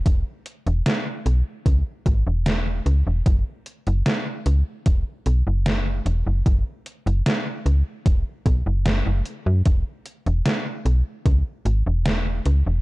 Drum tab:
HH |x-xxx-x-x-x-x-x-|x-xxx-x-x-x-x-x-|x-xxx-x-x-x-x-x-|x-xxx-x-x-x-x-x-|
SD |----o-------o---|----o-------o---|----o-------o---|----o-------o---|
BD |o-------o-o-----|o-------o-------|o-------o-o-----|o-------o-------|